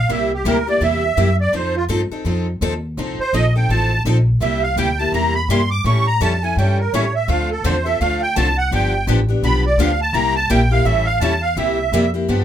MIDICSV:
0, 0, Header, 1, 6, 480
1, 0, Start_track
1, 0, Tempo, 358423
1, 130, Time_signature, 4, 2, 24, 8
1, 16664, End_track
2, 0, Start_track
2, 0, Title_t, "Accordion"
2, 0, Program_c, 0, 21
2, 0, Note_on_c, 0, 77, 100
2, 142, Note_off_c, 0, 77, 0
2, 160, Note_on_c, 0, 76, 72
2, 425, Note_off_c, 0, 76, 0
2, 457, Note_on_c, 0, 67, 65
2, 625, Note_off_c, 0, 67, 0
2, 629, Note_on_c, 0, 70, 73
2, 901, Note_off_c, 0, 70, 0
2, 921, Note_on_c, 0, 74, 82
2, 1097, Note_off_c, 0, 74, 0
2, 1122, Note_on_c, 0, 76, 89
2, 1825, Note_off_c, 0, 76, 0
2, 1887, Note_on_c, 0, 74, 80
2, 2062, Note_off_c, 0, 74, 0
2, 2083, Note_on_c, 0, 72, 68
2, 2350, Note_off_c, 0, 72, 0
2, 2360, Note_on_c, 0, 65, 86
2, 2471, Note_off_c, 0, 65, 0
2, 4287, Note_on_c, 0, 72, 97
2, 4466, Note_off_c, 0, 72, 0
2, 4472, Note_on_c, 0, 75, 94
2, 4749, Note_off_c, 0, 75, 0
2, 4778, Note_on_c, 0, 79, 76
2, 4952, Note_off_c, 0, 79, 0
2, 4956, Note_on_c, 0, 81, 101
2, 5399, Note_off_c, 0, 81, 0
2, 5924, Note_on_c, 0, 76, 88
2, 6197, Note_off_c, 0, 76, 0
2, 6201, Note_on_c, 0, 77, 96
2, 6387, Note_off_c, 0, 77, 0
2, 6405, Note_on_c, 0, 79, 87
2, 6676, Note_on_c, 0, 81, 100
2, 6679, Note_off_c, 0, 79, 0
2, 6865, Note_off_c, 0, 81, 0
2, 6873, Note_on_c, 0, 82, 87
2, 7153, Note_off_c, 0, 82, 0
2, 7161, Note_on_c, 0, 83, 111
2, 7348, Note_off_c, 0, 83, 0
2, 7358, Note_on_c, 0, 84, 90
2, 7637, Note_off_c, 0, 84, 0
2, 7644, Note_on_c, 0, 86, 109
2, 7830, Note_off_c, 0, 86, 0
2, 7850, Note_on_c, 0, 85, 84
2, 8123, Note_off_c, 0, 85, 0
2, 8125, Note_on_c, 0, 82, 111
2, 8311, Note_off_c, 0, 82, 0
2, 8328, Note_on_c, 0, 81, 87
2, 8603, Note_off_c, 0, 81, 0
2, 8609, Note_on_c, 0, 80, 89
2, 8794, Note_off_c, 0, 80, 0
2, 8807, Note_on_c, 0, 79, 78
2, 9082, Note_off_c, 0, 79, 0
2, 9098, Note_on_c, 0, 70, 70
2, 9279, Note_off_c, 0, 70, 0
2, 9280, Note_on_c, 0, 73, 76
2, 9559, Note_off_c, 0, 73, 0
2, 9573, Note_on_c, 0, 76, 88
2, 9756, Note_off_c, 0, 76, 0
2, 9765, Note_on_c, 0, 77, 84
2, 10041, Note_off_c, 0, 77, 0
2, 10061, Note_on_c, 0, 69, 82
2, 10240, Note_off_c, 0, 69, 0
2, 10240, Note_on_c, 0, 72, 82
2, 10510, Note_on_c, 0, 76, 90
2, 10518, Note_off_c, 0, 72, 0
2, 10704, Note_off_c, 0, 76, 0
2, 10721, Note_on_c, 0, 77, 95
2, 10999, Note_off_c, 0, 77, 0
2, 11010, Note_on_c, 0, 79, 98
2, 11194, Note_off_c, 0, 79, 0
2, 11194, Note_on_c, 0, 81, 93
2, 11475, Note_off_c, 0, 81, 0
2, 11490, Note_on_c, 0, 78, 101
2, 11673, Note_off_c, 0, 78, 0
2, 11709, Note_on_c, 0, 79, 85
2, 12139, Note_off_c, 0, 79, 0
2, 12645, Note_on_c, 0, 83, 101
2, 12918, Note_off_c, 0, 83, 0
2, 12940, Note_on_c, 0, 74, 75
2, 13116, Note_off_c, 0, 74, 0
2, 13122, Note_on_c, 0, 77, 89
2, 13395, Note_off_c, 0, 77, 0
2, 13413, Note_on_c, 0, 81, 103
2, 13571, Note_on_c, 0, 82, 92
2, 13591, Note_off_c, 0, 81, 0
2, 13858, Note_off_c, 0, 82, 0
2, 13866, Note_on_c, 0, 81, 109
2, 14056, Note_off_c, 0, 81, 0
2, 14067, Note_on_c, 0, 79, 93
2, 14345, Note_off_c, 0, 79, 0
2, 14353, Note_on_c, 0, 77, 98
2, 14531, Note_on_c, 0, 76, 91
2, 14538, Note_off_c, 0, 77, 0
2, 14808, Note_on_c, 0, 77, 110
2, 14816, Note_off_c, 0, 76, 0
2, 15003, Note_on_c, 0, 81, 93
2, 15004, Note_off_c, 0, 77, 0
2, 15290, Note_off_c, 0, 81, 0
2, 15294, Note_on_c, 0, 77, 99
2, 15486, Note_off_c, 0, 77, 0
2, 15502, Note_on_c, 0, 76, 80
2, 16211, Note_off_c, 0, 76, 0
2, 16664, End_track
3, 0, Start_track
3, 0, Title_t, "Steel-string acoustic guitar"
3, 0, Program_c, 1, 25
3, 126, Note_on_c, 1, 58, 64
3, 127, Note_on_c, 1, 48, 71
3, 132, Note_on_c, 1, 55, 66
3, 133, Note_on_c, 1, 64, 76
3, 137, Note_on_c, 1, 67, 72
3, 403, Note_off_c, 1, 58, 0
3, 404, Note_off_c, 1, 48, 0
3, 406, Note_off_c, 1, 55, 0
3, 406, Note_off_c, 1, 64, 0
3, 408, Note_off_c, 1, 67, 0
3, 604, Note_on_c, 1, 48, 79
3, 613, Note_on_c, 1, 55, 85
3, 619, Note_on_c, 1, 64, 99
3, 619, Note_on_c, 1, 67, 99
3, 620, Note_on_c, 1, 58, 82
3, 753, Note_off_c, 1, 48, 0
3, 757, Note_off_c, 1, 55, 0
3, 760, Note_off_c, 1, 64, 0
3, 760, Note_off_c, 1, 67, 0
3, 761, Note_off_c, 1, 58, 0
3, 901, Note_on_c, 1, 67, 51
3, 914, Note_on_c, 1, 64, 51
3, 919, Note_on_c, 1, 58, 45
3, 1067, Note_off_c, 1, 58, 0
3, 1076, Note_off_c, 1, 64, 0
3, 1079, Note_off_c, 1, 67, 0
3, 1079, Note_on_c, 1, 55, 55
3, 1084, Note_on_c, 1, 58, 57
3, 1087, Note_on_c, 1, 48, 61
3, 1093, Note_on_c, 1, 64, 65
3, 1095, Note_on_c, 1, 67, 63
3, 1361, Note_off_c, 1, 55, 0
3, 1363, Note_off_c, 1, 58, 0
3, 1365, Note_off_c, 1, 48, 0
3, 1367, Note_off_c, 1, 64, 0
3, 1369, Note_off_c, 1, 67, 0
3, 1569, Note_on_c, 1, 48, 89
3, 1573, Note_on_c, 1, 64, 85
3, 1575, Note_on_c, 1, 55, 77
3, 1578, Note_on_c, 1, 58, 83
3, 1578, Note_on_c, 1, 67, 107
3, 1717, Note_off_c, 1, 48, 0
3, 1719, Note_off_c, 1, 64, 0
3, 1720, Note_off_c, 1, 55, 0
3, 1721, Note_off_c, 1, 58, 0
3, 1721, Note_off_c, 1, 67, 0
3, 2050, Note_on_c, 1, 53, 71
3, 2056, Note_on_c, 1, 60, 67
3, 2059, Note_on_c, 1, 63, 69
3, 2061, Note_on_c, 1, 69, 79
3, 2328, Note_off_c, 1, 53, 0
3, 2331, Note_off_c, 1, 60, 0
3, 2332, Note_off_c, 1, 63, 0
3, 2333, Note_off_c, 1, 69, 0
3, 2525, Note_on_c, 1, 53, 75
3, 2533, Note_on_c, 1, 60, 95
3, 2540, Note_on_c, 1, 69, 99
3, 2542, Note_on_c, 1, 63, 84
3, 2676, Note_off_c, 1, 53, 0
3, 2680, Note_off_c, 1, 60, 0
3, 2684, Note_off_c, 1, 69, 0
3, 2685, Note_off_c, 1, 63, 0
3, 2832, Note_on_c, 1, 69, 55
3, 2838, Note_on_c, 1, 63, 49
3, 2847, Note_on_c, 1, 60, 42
3, 3003, Note_off_c, 1, 60, 0
3, 3009, Note_off_c, 1, 69, 0
3, 3010, Note_off_c, 1, 63, 0
3, 3010, Note_on_c, 1, 53, 60
3, 3019, Note_on_c, 1, 60, 58
3, 3025, Note_on_c, 1, 69, 71
3, 3026, Note_on_c, 1, 63, 63
3, 3289, Note_off_c, 1, 53, 0
3, 3294, Note_off_c, 1, 60, 0
3, 3297, Note_off_c, 1, 69, 0
3, 3298, Note_off_c, 1, 63, 0
3, 3509, Note_on_c, 1, 53, 89
3, 3511, Note_on_c, 1, 60, 85
3, 3515, Note_on_c, 1, 63, 90
3, 3517, Note_on_c, 1, 69, 108
3, 3650, Note_off_c, 1, 53, 0
3, 3651, Note_off_c, 1, 60, 0
3, 3653, Note_off_c, 1, 63, 0
3, 3654, Note_off_c, 1, 69, 0
3, 3994, Note_on_c, 1, 53, 62
3, 4000, Note_on_c, 1, 60, 67
3, 4003, Note_on_c, 1, 63, 74
3, 4004, Note_on_c, 1, 69, 69
3, 4263, Note_off_c, 1, 53, 0
3, 4266, Note_off_c, 1, 60, 0
3, 4268, Note_off_c, 1, 63, 0
3, 4268, Note_off_c, 1, 69, 0
3, 4468, Note_on_c, 1, 53, 78
3, 4477, Note_on_c, 1, 60, 94
3, 4477, Note_on_c, 1, 63, 86
3, 4481, Note_on_c, 1, 69, 96
3, 4612, Note_off_c, 1, 53, 0
3, 4616, Note_off_c, 1, 60, 0
3, 4616, Note_off_c, 1, 63, 0
3, 4618, Note_off_c, 1, 69, 0
3, 4762, Note_on_c, 1, 69, 54
3, 4775, Note_on_c, 1, 63, 47
3, 4783, Note_on_c, 1, 60, 44
3, 4942, Note_off_c, 1, 63, 0
3, 4942, Note_off_c, 1, 69, 0
3, 4944, Note_off_c, 1, 60, 0
3, 4957, Note_on_c, 1, 53, 65
3, 4958, Note_on_c, 1, 63, 60
3, 4961, Note_on_c, 1, 60, 56
3, 4963, Note_on_c, 1, 69, 64
3, 5227, Note_off_c, 1, 53, 0
3, 5227, Note_off_c, 1, 63, 0
3, 5229, Note_off_c, 1, 60, 0
3, 5230, Note_off_c, 1, 69, 0
3, 5430, Note_on_c, 1, 53, 87
3, 5434, Note_on_c, 1, 60, 82
3, 5442, Note_on_c, 1, 63, 94
3, 5447, Note_on_c, 1, 69, 97
3, 5574, Note_off_c, 1, 53, 0
3, 5576, Note_off_c, 1, 60, 0
3, 5580, Note_off_c, 1, 63, 0
3, 5583, Note_off_c, 1, 69, 0
3, 5907, Note_on_c, 1, 48, 67
3, 5917, Note_on_c, 1, 55, 67
3, 5919, Note_on_c, 1, 58, 74
3, 5920, Note_on_c, 1, 64, 80
3, 5924, Note_on_c, 1, 67, 76
3, 6183, Note_off_c, 1, 48, 0
3, 6189, Note_off_c, 1, 55, 0
3, 6190, Note_off_c, 1, 58, 0
3, 6190, Note_off_c, 1, 64, 0
3, 6192, Note_off_c, 1, 67, 0
3, 6396, Note_on_c, 1, 48, 78
3, 6398, Note_on_c, 1, 55, 84
3, 6403, Note_on_c, 1, 58, 87
3, 6407, Note_on_c, 1, 64, 88
3, 6407, Note_on_c, 1, 67, 100
3, 6539, Note_off_c, 1, 48, 0
3, 6540, Note_off_c, 1, 55, 0
3, 6543, Note_off_c, 1, 58, 0
3, 6545, Note_off_c, 1, 64, 0
3, 6545, Note_off_c, 1, 67, 0
3, 6687, Note_on_c, 1, 67, 60
3, 6696, Note_on_c, 1, 64, 54
3, 6710, Note_on_c, 1, 58, 45
3, 6868, Note_off_c, 1, 67, 0
3, 6870, Note_off_c, 1, 64, 0
3, 6880, Note_off_c, 1, 58, 0
3, 6881, Note_on_c, 1, 48, 64
3, 6883, Note_on_c, 1, 55, 55
3, 6886, Note_on_c, 1, 64, 72
3, 6891, Note_on_c, 1, 67, 72
3, 6894, Note_on_c, 1, 58, 73
3, 7152, Note_off_c, 1, 48, 0
3, 7153, Note_off_c, 1, 55, 0
3, 7155, Note_off_c, 1, 64, 0
3, 7157, Note_off_c, 1, 67, 0
3, 7158, Note_off_c, 1, 58, 0
3, 7364, Note_on_c, 1, 55, 101
3, 7366, Note_on_c, 1, 48, 96
3, 7371, Note_on_c, 1, 58, 92
3, 7376, Note_on_c, 1, 64, 105
3, 7380, Note_on_c, 1, 67, 101
3, 7505, Note_off_c, 1, 55, 0
3, 7506, Note_off_c, 1, 48, 0
3, 7508, Note_off_c, 1, 58, 0
3, 7511, Note_off_c, 1, 64, 0
3, 7513, Note_off_c, 1, 67, 0
3, 7838, Note_on_c, 1, 52, 69
3, 7841, Note_on_c, 1, 61, 65
3, 7842, Note_on_c, 1, 55, 67
3, 7844, Note_on_c, 1, 64, 67
3, 7850, Note_on_c, 1, 69, 68
3, 8112, Note_off_c, 1, 52, 0
3, 8113, Note_off_c, 1, 61, 0
3, 8114, Note_off_c, 1, 55, 0
3, 8115, Note_off_c, 1, 64, 0
3, 8118, Note_off_c, 1, 69, 0
3, 8311, Note_on_c, 1, 52, 74
3, 8314, Note_on_c, 1, 55, 92
3, 8321, Note_on_c, 1, 64, 93
3, 8322, Note_on_c, 1, 61, 87
3, 8324, Note_on_c, 1, 69, 94
3, 8459, Note_off_c, 1, 52, 0
3, 8461, Note_off_c, 1, 55, 0
3, 8464, Note_off_c, 1, 64, 0
3, 8465, Note_off_c, 1, 61, 0
3, 8466, Note_off_c, 1, 69, 0
3, 8609, Note_on_c, 1, 69, 52
3, 8622, Note_on_c, 1, 64, 51
3, 8626, Note_on_c, 1, 61, 50
3, 8791, Note_off_c, 1, 69, 0
3, 8798, Note_off_c, 1, 64, 0
3, 8800, Note_off_c, 1, 61, 0
3, 8815, Note_on_c, 1, 52, 55
3, 8818, Note_on_c, 1, 55, 67
3, 8818, Note_on_c, 1, 64, 68
3, 8820, Note_on_c, 1, 61, 59
3, 8825, Note_on_c, 1, 69, 72
3, 9081, Note_off_c, 1, 52, 0
3, 9082, Note_off_c, 1, 55, 0
3, 9082, Note_off_c, 1, 64, 0
3, 9083, Note_off_c, 1, 61, 0
3, 9086, Note_off_c, 1, 69, 0
3, 9290, Note_on_c, 1, 52, 94
3, 9294, Note_on_c, 1, 61, 99
3, 9297, Note_on_c, 1, 55, 84
3, 9299, Note_on_c, 1, 64, 90
3, 9304, Note_on_c, 1, 69, 85
3, 9429, Note_off_c, 1, 52, 0
3, 9431, Note_off_c, 1, 61, 0
3, 9433, Note_off_c, 1, 55, 0
3, 9434, Note_off_c, 1, 64, 0
3, 9436, Note_off_c, 1, 69, 0
3, 9752, Note_on_c, 1, 50, 67
3, 9754, Note_on_c, 1, 57, 63
3, 9756, Note_on_c, 1, 65, 71
3, 9761, Note_on_c, 1, 60, 67
3, 9765, Note_on_c, 1, 69, 75
3, 10029, Note_off_c, 1, 50, 0
3, 10031, Note_off_c, 1, 57, 0
3, 10031, Note_off_c, 1, 65, 0
3, 10034, Note_off_c, 1, 60, 0
3, 10036, Note_off_c, 1, 69, 0
3, 10236, Note_on_c, 1, 57, 93
3, 10239, Note_on_c, 1, 50, 92
3, 10242, Note_on_c, 1, 60, 81
3, 10243, Note_on_c, 1, 69, 94
3, 10250, Note_on_c, 1, 65, 94
3, 10382, Note_off_c, 1, 57, 0
3, 10384, Note_off_c, 1, 50, 0
3, 10385, Note_off_c, 1, 60, 0
3, 10386, Note_off_c, 1, 69, 0
3, 10389, Note_off_c, 1, 65, 0
3, 10522, Note_on_c, 1, 69, 54
3, 10531, Note_on_c, 1, 65, 58
3, 10542, Note_on_c, 1, 60, 44
3, 10708, Note_off_c, 1, 69, 0
3, 10713, Note_off_c, 1, 65, 0
3, 10718, Note_off_c, 1, 60, 0
3, 10724, Note_on_c, 1, 50, 58
3, 10732, Note_on_c, 1, 57, 66
3, 10734, Note_on_c, 1, 60, 65
3, 10736, Note_on_c, 1, 65, 70
3, 10739, Note_on_c, 1, 69, 64
3, 10995, Note_off_c, 1, 50, 0
3, 10999, Note_off_c, 1, 57, 0
3, 11000, Note_off_c, 1, 60, 0
3, 11001, Note_off_c, 1, 65, 0
3, 11002, Note_off_c, 1, 69, 0
3, 11198, Note_on_c, 1, 50, 95
3, 11201, Note_on_c, 1, 57, 92
3, 11208, Note_on_c, 1, 60, 94
3, 11208, Note_on_c, 1, 65, 99
3, 11208, Note_on_c, 1, 69, 98
3, 11343, Note_off_c, 1, 50, 0
3, 11344, Note_off_c, 1, 57, 0
3, 11347, Note_off_c, 1, 60, 0
3, 11347, Note_off_c, 1, 65, 0
3, 11347, Note_off_c, 1, 69, 0
3, 11679, Note_on_c, 1, 50, 68
3, 11681, Note_on_c, 1, 53, 70
3, 11686, Note_on_c, 1, 59, 68
3, 11691, Note_on_c, 1, 62, 74
3, 11693, Note_on_c, 1, 67, 82
3, 11951, Note_off_c, 1, 50, 0
3, 11952, Note_off_c, 1, 53, 0
3, 11955, Note_off_c, 1, 59, 0
3, 11957, Note_off_c, 1, 62, 0
3, 11958, Note_off_c, 1, 67, 0
3, 12164, Note_on_c, 1, 53, 89
3, 12165, Note_on_c, 1, 50, 86
3, 12167, Note_on_c, 1, 59, 93
3, 12170, Note_on_c, 1, 67, 94
3, 12172, Note_on_c, 1, 62, 91
3, 12304, Note_off_c, 1, 53, 0
3, 12305, Note_off_c, 1, 50, 0
3, 12306, Note_off_c, 1, 59, 0
3, 12307, Note_off_c, 1, 67, 0
3, 12308, Note_off_c, 1, 62, 0
3, 12434, Note_on_c, 1, 67, 50
3, 12447, Note_on_c, 1, 62, 49
3, 12454, Note_on_c, 1, 59, 54
3, 12622, Note_off_c, 1, 62, 0
3, 12622, Note_off_c, 1, 67, 0
3, 12623, Note_off_c, 1, 59, 0
3, 12635, Note_on_c, 1, 50, 60
3, 12636, Note_on_c, 1, 53, 63
3, 12638, Note_on_c, 1, 62, 63
3, 12639, Note_on_c, 1, 59, 67
3, 12648, Note_on_c, 1, 67, 72
3, 12907, Note_off_c, 1, 50, 0
3, 12908, Note_off_c, 1, 53, 0
3, 12909, Note_off_c, 1, 59, 0
3, 12909, Note_off_c, 1, 62, 0
3, 12914, Note_off_c, 1, 67, 0
3, 13108, Note_on_c, 1, 50, 91
3, 13121, Note_on_c, 1, 59, 98
3, 13121, Note_on_c, 1, 62, 109
3, 13121, Note_on_c, 1, 67, 109
3, 13122, Note_on_c, 1, 53, 88
3, 13254, Note_off_c, 1, 50, 0
3, 13260, Note_off_c, 1, 59, 0
3, 13260, Note_off_c, 1, 67, 0
3, 13261, Note_off_c, 1, 53, 0
3, 13261, Note_off_c, 1, 62, 0
3, 13575, Note_on_c, 1, 48, 63
3, 13583, Note_on_c, 1, 64, 81
3, 13584, Note_on_c, 1, 55, 71
3, 13591, Note_on_c, 1, 58, 78
3, 13592, Note_on_c, 1, 67, 80
3, 13855, Note_off_c, 1, 48, 0
3, 13859, Note_off_c, 1, 64, 0
3, 13860, Note_off_c, 1, 55, 0
3, 13863, Note_off_c, 1, 58, 0
3, 13864, Note_off_c, 1, 67, 0
3, 14056, Note_on_c, 1, 48, 83
3, 14059, Note_on_c, 1, 55, 92
3, 14065, Note_on_c, 1, 58, 97
3, 14066, Note_on_c, 1, 67, 89
3, 14071, Note_on_c, 1, 64, 105
3, 14206, Note_off_c, 1, 48, 0
3, 14207, Note_off_c, 1, 55, 0
3, 14210, Note_off_c, 1, 58, 0
3, 14211, Note_off_c, 1, 67, 0
3, 14213, Note_off_c, 1, 64, 0
3, 14343, Note_on_c, 1, 67, 53
3, 14351, Note_on_c, 1, 64, 54
3, 14363, Note_on_c, 1, 58, 46
3, 14528, Note_off_c, 1, 64, 0
3, 14531, Note_off_c, 1, 67, 0
3, 14531, Note_on_c, 1, 52, 61
3, 14537, Note_off_c, 1, 58, 0
3, 14539, Note_on_c, 1, 55, 70
3, 14542, Note_on_c, 1, 61, 74
3, 14544, Note_on_c, 1, 64, 74
3, 14549, Note_on_c, 1, 69, 75
3, 14811, Note_off_c, 1, 52, 0
3, 14814, Note_off_c, 1, 55, 0
3, 14816, Note_off_c, 1, 61, 0
3, 14817, Note_off_c, 1, 64, 0
3, 14819, Note_off_c, 1, 69, 0
3, 15017, Note_on_c, 1, 55, 100
3, 15019, Note_on_c, 1, 52, 87
3, 15025, Note_on_c, 1, 61, 102
3, 15031, Note_on_c, 1, 64, 105
3, 15032, Note_on_c, 1, 69, 98
3, 15163, Note_off_c, 1, 55, 0
3, 15164, Note_off_c, 1, 52, 0
3, 15168, Note_off_c, 1, 61, 0
3, 15171, Note_off_c, 1, 64, 0
3, 15171, Note_off_c, 1, 69, 0
3, 15492, Note_on_c, 1, 48, 77
3, 15498, Note_on_c, 1, 64, 77
3, 15499, Note_on_c, 1, 55, 76
3, 15499, Note_on_c, 1, 58, 71
3, 15499, Note_on_c, 1, 67, 75
3, 15768, Note_off_c, 1, 48, 0
3, 15771, Note_off_c, 1, 64, 0
3, 15772, Note_off_c, 1, 55, 0
3, 15772, Note_off_c, 1, 58, 0
3, 15772, Note_off_c, 1, 67, 0
3, 15983, Note_on_c, 1, 55, 97
3, 15984, Note_on_c, 1, 48, 99
3, 15989, Note_on_c, 1, 58, 104
3, 15993, Note_on_c, 1, 67, 96
3, 15995, Note_on_c, 1, 64, 95
3, 16124, Note_off_c, 1, 48, 0
3, 16124, Note_off_c, 1, 55, 0
3, 16127, Note_off_c, 1, 58, 0
3, 16129, Note_off_c, 1, 67, 0
3, 16130, Note_off_c, 1, 64, 0
3, 16256, Note_on_c, 1, 67, 55
3, 16266, Note_on_c, 1, 64, 50
3, 16278, Note_on_c, 1, 58, 50
3, 16442, Note_off_c, 1, 67, 0
3, 16447, Note_off_c, 1, 64, 0
3, 16453, Note_off_c, 1, 58, 0
3, 16456, Note_on_c, 1, 50, 58
3, 16457, Note_on_c, 1, 53, 58
3, 16460, Note_on_c, 1, 59, 62
3, 16465, Note_on_c, 1, 67, 65
3, 16467, Note_on_c, 1, 62, 74
3, 16664, Note_off_c, 1, 50, 0
3, 16664, Note_off_c, 1, 53, 0
3, 16664, Note_off_c, 1, 59, 0
3, 16664, Note_off_c, 1, 62, 0
3, 16664, Note_off_c, 1, 67, 0
3, 16664, End_track
4, 0, Start_track
4, 0, Title_t, "Steel-string acoustic guitar"
4, 0, Program_c, 2, 25
4, 9758, Note_on_c, 2, 53, 70
4, 9770, Note_on_c, 2, 62, 70
4, 10033, Note_off_c, 2, 53, 0
4, 10039, Note_off_c, 2, 62, 0
4, 10242, Note_on_c, 2, 53, 94
4, 10254, Note_on_c, 2, 62, 96
4, 10385, Note_off_c, 2, 53, 0
4, 10391, Note_off_c, 2, 62, 0
4, 10725, Note_on_c, 2, 53, 75
4, 10739, Note_on_c, 2, 62, 72
4, 10995, Note_off_c, 2, 53, 0
4, 11002, Note_off_c, 2, 62, 0
4, 11212, Note_on_c, 2, 53, 80
4, 11223, Note_on_c, 2, 62, 96
4, 11349, Note_off_c, 2, 53, 0
4, 11355, Note_off_c, 2, 62, 0
4, 16664, End_track
5, 0, Start_track
5, 0, Title_t, "Upright bass"
5, 0, Program_c, 3, 32
5, 121, Note_on_c, 3, 36, 90
5, 589, Note_off_c, 3, 36, 0
5, 597, Note_on_c, 3, 38, 85
5, 1070, Note_off_c, 3, 38, 0
5, 1081, Note_on_c, 3, 40, 89
5, 1553, Note_off_c, 3, 40, 0
5, 1568, Note_on_c, 3, 42, 86
5, 2038, Note_off_c, 3, 42, 0
5, 2045, Note_on_c, 3, 41, 89
5, 2517, Note_off_c, 3, 41, 0
5, 2527, Note_on_c, 3, 43, 79
5, 2801, Note_off_c, 3, 43, 0
5, 3007, Note_on_c, 3, 41, 78
5, 3480, Note_off_c, 3, 41, 0
5, 3495, Note_on_c, 3, 39, 90
5, 3965, Note_off_c, 3, 39, 0
5, 3981, Note_on_c, 3, 36, 87
5, 4250, Note_off_c, 3, 36, 0
5, 4459, Note_on_c, 3, 34, 84
5, 4929, Note_off_c, 3, 34, 0
5, 4940, Note_on_c, 3, 33, 89
5, 5410, Note_off_c, 3, 33, 0
5, 5421, Note_on_c, 3, 34, 92
5, 5891, Note_off_c, 3, 34, 0
5, 5899, Note_on_c, 3, 36, 95
5, 6372, Note_off_c, 3, 36, 0
5, 6378, Note_on_c, 3, 38, 86
5, 6847, Note_off_c, 3, 38, 0
5, 6855, Note_on_c, 3, 40, 94
5, 7331, Note_off_c, 3, 40, 0
5, 7343, Note_on_c, 3, 43, 93
5, 7815, Note_off_c, 3, 43, 0
5, 7824, Note_on_c, 3, 45, 100
5, 8296, Note_off_c, 3, 45, 0
5, 8309, Note_on_c, 3, 41, 85
5, 8779, Note_off_c, 3, 41, 0
5, 8790, Note_on_c, 3, 43, 87
5, 9259, Note_off_c, 3, 43, 0
5, 9274, Note_on_c, 3, 45, 80
5, 9742, Note_off_c, 3, 45, 0
5, 9749, Note_on_c, 3, 38, 102
5, 10219, Note_off_c, 3, 38, 0
5, 10233, Note_on_c, 3, 40, 89
5, 10701, Note_off_c, 3, 40, 0
5, 10719, Note_on_c, 3, 38, 92
5, 11183, Note_off_c, 3, 38, 0
5, 11200, Note_on_c, 3, 36, 89
5, 11660, Note_off_c, 3, 36, 0
5, 11668, Note_on_c, 3, 31, 92
5, 12136, Note_off_c, 3, 31, 0
5, 12148, Note_on_c, 3, 33, 99
5, 12610, Note_off_c, 3, 33, 0
5, 12618, Note_on_c, 3, 35, 87
5, 13084, Note_off_c, 3, 35, 0
5, 13092, Note_on_c, 3, 38, 98
5, 13558, Note_off_c, 3, 38, 0
5, 13566, Note_on_c, 3, 36, 103
5, 14040, Note_off_c, 3, 36, 0
5, 14059, Note_on_c, 3, 34, 93
5, 14519, Note_off_c, 3, 34, 0
5, 14528, Note_on_c, 3, 33, 91
5, 14999, Note_off_c, 3, 33, 0
5, 15006, Note_on_c, 3, 40, 93
5, 15476, Note_off_c, 3, 40, 0
5, 15487, Note_on_c, 3, 36, 95
5, 15955, Note_off_c, 3, 36, 0
5, 15964, Note_on_c, 3, 41, 91
5, 16433, Note_off_c, 3, 41, 0
5, 16453, Note_on_c, 3, 43, 94
5, 16664, Note_off_c, 3, 43, 0
5, 16664, End_track
6, 0, Start_track
6, 0, Title_t, "Muted upright bass strokes"
6, 2819, Note_on_c, 9, 29, 36
6, 2953, Note_off_c, 9, 29, 0
6, 4260, Note_on_c, 9, 29, 37
6, 4394, Note_off_c, 9, 29, 0
6, 16664, End_track
0, 0, End_of_file